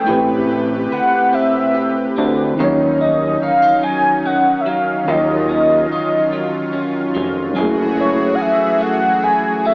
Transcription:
Already playing: clean electric guitar A3 E4, analog synth pad A3, soft synth lead G5
0.04 analog synth pad C3 G4 B4, tine electric piano A3 E4, clean electric guitar A3 B4
0.09 analog synth bass A1, tine electric piano G4 B4
0.14 tine electric piano C4
0.49 clean electric guitar G4
0.92 analog synth bass D2, clean electric guitar B4, soft synth lead F#5
1.33 clean electric guitar C4, soft synth lead E5
1.75 clean electric guitar G4
2.17 analog synth bass D2, clean electric guitar C4
2.54 tine electric piano D#3 D#4, analog synth pad D#3 C#4 D#4
2.58 analog synth bass D#2, clean electric guitar D#3 F4, analog synth pad F#3, tine electric piano F#3 C#4
2.64 tine electric piano C#5
3.01 clean electric guitar C#4, soft synth lead D#5
3.42 analog synth bass D#2, clean electric guitar D#4, soft synth lead F5
3.62 clean electric guitar F4
3.83 clean electric guitar F#3, soft synth lead G#5
4.26 clean electric guitar C#4, soft synth lead F#5
4.61 soft synth lead E5
4.66 clean electric guitar F#3, soft synth lead F5
5.05 analog synth bass D#2, tine electric piano D#3 D#4, clean electric guitar D#3, analog synth pad F4
5.09 tine electric piano F#3 F4, clean electric guitar F4, soft synth lead D#5
5.14 tine electric piano D#5
5.49 clean electric guitar C#4
5.92 analog synth bass F1, clean electric guitar F4
6.33 clean electric guitar F#3
6.73 clean electric guitar C#4
7.15 analog synth bass F1, clean electric guitar F#3
7.54 analog synth pad E3 A3 F#4, tine electric piano F#3 C#4, clean electric guitar F#3 G#4
7.58 analog synth bass F#1, tine electric piano E4 G#4, analog synth pad G#4
7.63 tine electric piano A3
7.97 clean electric guitar E4, soft synth lead C#5
8.35 clean electric guitar G#4, soft synth lead F#5
8.41 analog synth bass A1, soft synth lead E5
8.81 clean electric guitar A3, soft synth lead F#5
9.23 clean electric guitar E4, soft synth lead G#5
9.65 clean electric guitar A3, soft synth lead E5

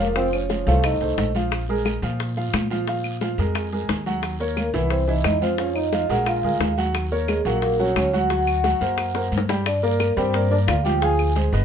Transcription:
Already playing: upright bass F1
0.00 grand piano F3 F4 F5, trombone A#3, vibraphone A#4
0.16 grand piano F3 F4 F5, trombone C4, vibraphone C5, high bongo, high conga, long guiro, maracas
0.33 trombone C#4, vibraphone C#5, high conga, claves
0.50 grand piano F3 F4 F5, high bongo, high conga, short guiro, maracas
0.67 upright bass C2, grand piano A3 A4 C5, trombone F4, vibraphone F5, high bongo, high conga, short guiro, maracas
0.84 trombone D#4, vibraphone D#5, high bongo, high conga, long guiro, claves, maracas
1.01 upright bass C2, grand piano A3 A4 C5, high bongo, high conga, maracas
1.18 upright bass A#1, high bongo, low bongo, high conga, short guiro, maracas
1.35 grand piano F3 F4 F5, high bongo, high conga, short guiro, maracas
1.52 high bongo, high conga, long guiro, claves, maracas
1.69 grand piano G#3 G#4 A#4, high bongo, high conga
1.85 high bongo, high conga, short guiro, claves, maracas
2.02 upright bass A#2, grand piano F3 F4 F5, high bongo, high conga, short guiro, maracas
2.20 high bongo, high conga, long guiro, maracas
2.37 grand piano F3 F4 F5, high bongo, high conga, maracas
2.53 upright bass A#2, high bongo, low bongo, high conga, short guiro, claves, maracas
2.70 grand piano F3 F4 F5, high conga, short guiro, maracas
2.87 grand piano F3 F4 F5, high bongo, high conga, long guiro, maracas
3.04 high conga, claves, maracas
3.21 grand piano F3 F4 F5, high bongo, high conga, short guiro, maracas
3.38 upright bass F2, grand piano G#3 G#4 A#4, high bongo, high conga, short guiro, maracas
3.55 high bongo, high conga, long guiro, claves, maracas
3.72 grand piano G#3 G#4 A#4, high bongo, high conga
3.89 upright bass D#2, high bongo, low bongo, high conga, short guiro, maracas
4.06 grand piano F#3 F#4 F#5, high bongo, high conga, short guiro, maracas
4.23 high bongo, long guiro, claves, maracas
4.40 grand piano A#3 A#4 C#5, high bongo, high conga, maracas
4.57 trombone A#3, vibraphone A#4, high bongo, high conga, short guiro, claves, maracas
4.74 upright bass C2, grand piano E3 E4 E5, trombone B3, vibraphone B4, high bongo, high conga, short guiro, maracas
4.90 trombone C4, vibraphone C5, high bongo, high conga, long guiro, maracas
5.07 grand piano E3 E4 E5, trombone D#4, vibraphone D#5, high bongo, high conga
5.24 upright bass F2, trombone D#4, vibraphone D#5, high bongo, low bongo, high conga, short guiro, claves, maracas
5.41 grand piano F3 F4 F5, trombone C4, vibraphone C5, high conga, short guiro, maracas
5.58 grand piano F3 F4 F5, trombone C#4, high bongo, high conga, long guiro, maracas
5.75 trombone D#4, vibraphone D#5, high conga, claves
5.92 grand piano F3 F4 F5, high bongo, high conga, short guiro, maracas
6.09 upright bass A#1, grand piano G#3 G#4 A#4, trombone F#4, vibraphone F#5, high bongo, short guiro, maracas
6.26 trombone F4, vibraphone F5, high bongo, high conga, long guiro, claves, maracas
6.43 upright bass D2, grand piano G#3 G#4 A#4, high bongo, high conga
6.60 upright bass D#2, high bongo, low bongo, high conga, short guiro, maracas
6.77 grand piano F#3 F#4 F#5, high bongo, high conga, short guiro, maracas
6.94 high bongo, long guiro, claves, maracas
7.11 grand piano A#3 A#4 C#5, high bongo, high conga
7.28 trombone G#3, vibraphone G#4, high bongo, high conga, short guiro, claves, maracas
7.45 upright bass A#1, grand piano F#3 F#4 F#5, trombone A#3, vibraphone A#4, high bongo, short guiro, maracas
7.62 trombone A#3, vibraphone A#4, high bongo, high conga, long guiro, maracas
7.79 grand piano F#3 F#4 F#5, trombone C#4, vibraphone C#5, high bongo, high conga, maracas
7.96 upright bass D2, trombone C#4, vibraphone C#5, high bongo, low bongo, high conga, short guiro, claves, maracas
8.13 grand piano F#3 F#4 F#5, trombone F#4, vibraphone F#5, high conga, short guiro, maracas
8.30 grand piano F#3 F#4 F#5, high bongo, long guiro, maracas
8.47 high conga, claves, maracas
8.64 grand piano F#3 F#4 F#5, high bongo, high conga, short guiro, maracas
8.81 upright bass F#2, grand piano A#3 A#4 C5, high bongo, short guiro, maracas
8.98 high bongo, high conga, long guiro, claves, maracas
9.15 grand piano A#3 A#4 C5, high bongo, high conga
9.32 upright bass G2, high conga, short guiro, maracas
9.38 low bongo
9.49 grand piano G3 G4 G5, low bongo, high conga, short guiro, maracas
9.66 trombone D4, vibraphone D5, high bongo, long guiro, claves, maracas
9.83 grand piano A#3 A#4 D5, trombone A#3, vibraphone A#4, high bongo, high conga, maracas
10.00 high bongo, high conga, short guiro, claves, maracas
10.17 upright bass G2, grand piano G3 G4 G5, trombone C4, vibraphone C5, high bongo, high conga, short guiro, maracas
10.33 grand piano A#3 A#4 D5, high bongo, high conga, long guiro, maracas
10.51 grand piano A#3 A#4 D5, trombone D4, vibraphone D5, high bongo, high conga, maracas
10.67 upright bass D2, trombone F4, vibraphone F5, high bongo, low bongo, high conga, short guiro, claves, maracas
10.84 grand piano F3 F4 F5, trombone G4, vibraphone G5, high conga, short guiro, maracas
11.01 grand piano F3 F4 F5, trombone G#4, vibraphone G#5, high bongo, long guiro, maracas
11.19 high bongo, high conga, claves, maracas
11.35 grand piano G#3 G#4 C5, high bongo, high conga, short guiro, maracas
11.52 upright bass G1, grand piano B3 B4 D#5, high conga, short guiro, maracas

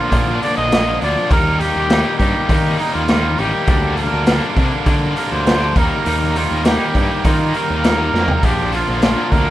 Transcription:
Already playing: overdriven electric guitar A#2 D3 F3 A#3 D4, trumpet F4
0.12 picked electric bass A#2, overdriven electric guitar A#2 D3 F3 A#3 D4, kick, open hi-hat
0.42 overdriven electric guitar A#2 D3 F3 A#3 D4, trumpet D5, open hi-hat
0.57 picked electric bass A#1, trumpet D#5
0.72 overdriven electric guitar A#2 D3 F3 A#3 D4, snare, open hi-hat
1.02 picked electric bass D2, overdriven electric guitar A#2 D3 F3 A#3 D4, trumpet D5, open hi-hat
1.31 picked electric bass D#2, overdriven electric guitar D#3 G3 A#3 D#4, trumpet A#4, kick, open hi-hat
1.59 overdriven electric guitar D#3 G3 A#3 D#4, trumpet G4, open hi-hat
1.76 picked electric bass D#2
1.90 overdriven electric guitar D#3 G3 A#3 D#4, snare, open hi-hat
2.19 picked electric bass G2, overdriven electric guitar D#3 G3 A#3 D#4, trumpet G4, kick, open hi-hat
2.49 picked electric bass D#3, overdriven electric guitar D#3 G3 A#3 D#4, kick, open hi-hat
2.79 overdriven electric guitar D#3 G3 A#3 D#4, trumpet D#4, open hi-hat
2.94 picked electric bass D#2, trumpet F4
3.08 overdriven electric guitar D#3 G3 A#3 D#4, snare, open hi-hat
3.38 picked electric bass A1, overdriven electric guitar D#3 G3 A#3 D#4, trumpet G4, open hi-hat
3.67 picked electric bass D2, overdriven electric guitar D3 G3 A#3 D4, kick, open hi-hat
3.97 overdriven electric guitar D3 G3 A#3 D4, trumpet A#4, open hi-hat
4.13 picked electric bass D2
4.26 overdriven electric guitar D3 G3 A#3 D4, snare, open hi-hat
4.56 picked electric bass C3, overdriven electric guitar D3 G3 A#3 D4, kick, open hi-hat
4.86 picked electric bass D3, overdriven electric guitar D3 G3 A#3 D4, kick, open hi-hat
5.16 overdriven electric guitar D3 G3 A#3 D4, trumpet A#4, open hi-hat
5.32 picked electric bass D2, trumpet C5
5.46 overdriven electric guitar D3 G3 A#3 D4, snare, open hi-hat
5.76 picked electric bass D#2, overdriven electric guitar D#3 G3 A#3 D#4, trumpet A#4, kick, open hi-hat
6.05 picked electric bass D#2, overdriven electric guitar D#3 G3 A#3 D#4, open hi-hat
6.35 overdriven electric guitar D#3 G3 A#3 D#4, trumpet F4, open hi-hat
6.51 picked electric bass D#2
6.65 overdriven electric guitar D#3 G3 A#3 D#4, trumpet G4, snare, open hi-hat
6.95 picked electric bass G2, overdriven electric guitar D#3 G3 A#3 D#4, kick, open hi-hat
7.24 picked electric bass D#3, overdriven electric guitar D#3 G3 A#3 D#4, trumpet F4, kick, open hi-hat
7.54 overdriven electric guitar D#3 G3 A#3 D#4, trumpet A#4, open hi-hat
7.70 picked electric bass D#2
7.84 overdriven electric guitar D#3 G3 A#3 D#4, snare, open hi-hat
8.14 picked electric bass F2, overdriven electric guitar D#3 G3 A#3 D#4, snare
8.28 floor tom
8.43 picked electric bass A#1, overdriven electric guitar A#2 D3 F3 A#3 D4, trumpet G4, kick, open hi-hat
8.72 overdriven electric guitar A#2 D3 F3 A#3 D4, trumpet F4, open hi-hat
8.88 picked electric bass A#1
9.02 overdriven electric guitar A#2 D3 F3 A#3 D4, trumpet F4, snare, open hi-hat
9.32 picked electric bass D2, overdriven electric guitar A#2 D3 F3 A#3 D4, trumpet A#4, kick, open hi-hat

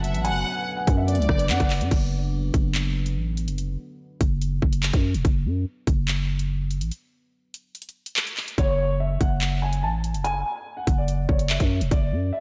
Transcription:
Already playing: 808-style bass F#1, ambient pad D3 F#3 B3
0.04 violin section E5, closed hi-hat
0.14 808-style bass A1, closed hi-hat
0.25 violin section F#5, grand piano G#5, closed hi-hat
0.30 808-style bass F#1
0.77 grand piano F#5
0.87 808-style bass F#2, kick, closed hi-hat
0.97 grand piano E5
1.08 grand piano D5, violin section D5, closed hi-hat
1.15 808-style bass C#2, closed hi-hat
1.22 closed hi-hat
1.29 808-style bass F#1, kick, cross-stick
1.39 closed hi-hat
1.50 808-style bass F#2, grand piano F#5, clap, closed hi-hat
1.60 808-style bass F#1, kick, cross-stick, closed hi-hat
1.70 clap, open hi-hat
1.81 808-style bass F#2, closed hi-hat
1.91 808-style bass F#1, kick, closed hi-hat, crash
2.54 808-style bass F#1, kick, closed hi-hat
2.75 clap, closed hi-hat
3.06 closed hi-hat
3.16 808-style bass A1
3.37 closed hi-hat
3.48 808-style bass F#1, closed hi-hat
3.58 closed hi-hat
4.21 808-style bass F#1, kick, closed hi-hat
4.42 closed hi-hat
4.62 808-style bass F#1, kick
4.73 closed hi-hat
4.83 clap, closed hi-hat
4.93 808-style bass F#2, kick, closed hi-hat
5.14 808-style bass E1, closed hi-hat
5.25 808-style bass F#1, kick, closed hi-hat
5.46 808-style bass F#2
5.87 808-style bass F#1, kick, closed hi-hat
6.08 clap, closed hi-hat
6.39 closed hi-hat
6.71 closed hi-hat
6.81 808-style bass A1, closed hi-hat
6.91 closed hi-hat
7.54 closed hi-hat
7.75 closed hi-hat
7.82 closed hi-hat
7.89 closed hi-hat
8.06 closed hi-hat
8.16 clap, closed hi-hat
8.27 closed hi-hat
8.37 clap, open hi-hat
8.48 closed hi-hat
8.58 808-style bass F#1, grand piano C#5, kick, closed hi-hat
9.00 grand piano E5
9.21 808-style bass F#1, grand piano F#5, kick, closed hi-hat
9.41 clap, closed hi-hat
9.62 grand piano G#5
9.73 closed hi-hat
9.83 808-style bass A1, grand piano A5
10.04 closed hi-hat
10.14 808-style bass F#1, closed hi-hat
10.24 grand piano G#5, closed hi-hat
10.77 grand piano F#5
10.87 808-style bass F#1, kick, closed hi-hat
10.98 grand piano D5
11.08 closed hi-hat
11.29 808-style bass F#1, grand piano C#5, kick
11.39 closed hi-hat
11.50 grand piano E5, clap, closed hi-hat
11.60 808-style bass F#2, kick, closed hi-hat
11.81 808-style bass E1, closed hi-hat
11.91 808-style bass F#1, grand piano D5, kick, closed hi-hat
12.12 808-style bass F#2
12.33 grand piano E5

